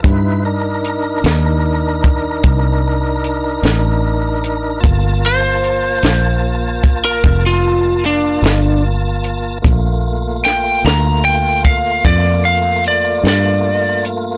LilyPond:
<<
  \new Staff \with { instrumentName = "Lead electric guitar" } { \time 12/8 \key g \minor \tempo 4. = 50 r1. | r8 c''2~ c''16 bes'8 f'8. d'4 r4 | r4 g''8 bes''8 g''8 f''8 d''8 f''8 d''8 d''4 r8 | }
  \new Staff \with { instrumentName = "Tonewheel organ" } { \time 12/8 \key g \minor <ees' e' b'>8 <d' ees' bes'>1~ <d' ees' bes'>4. | <bes f' a''>1. | <a bes f'>1. | }
  \new Staff \with { instrumentName = "Fingered electric bass" } { \clef bass \time 12/8 \key g \minor g,4. ees,4. c,4. a,,4. | g,,4. bes,,4. f,,4. g,,4. | bes,,4. d,4. f,4. g,4. | }
  \new DrumStaff \with { instrumentName = "Drums" } \drummode { \time 12/8 <hh bd>4 hh8 <hh sn>4 <hh bd>8 <hh bd>4 hh8 <hh sn>4 hh8 | <hh bd>4 hh8 <hh sn>4 <hh bd>8 <hh bd>4 hh8 <hh sn>4 hh8 | <hh bd>4 <hh sn>8 <hh sn>4 <hh bd>8 <hh bd>4 hh8 <hh sn>4 hh8 | }
>>